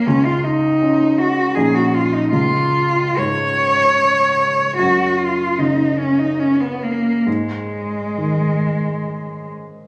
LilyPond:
<<
  \new Staff \with { instrumentName = "Cello" } { \time 3/4 \key cis \mixolydian \tempo 4 = 74 cis'16 eis'16 dis'4 fis'8 gis'16 fis'16 eis'16 dis'16 | eis'4 cis''2 | fis'8 eis'8 dis'8 cis'16 dis'16 cis'16 b16 ais8 | gis2~ gis8 r8 | }
  \new Staff \with { instrumentName = "Grand piano" } { \clef bass \time 3/4 \key cis \mixolydian cis,4 <cis' dis'>4 <ais,, cis' dis'>4 | cis,4 gis,2 | fis,4 cis2 | gis,4 dis2 | }
>>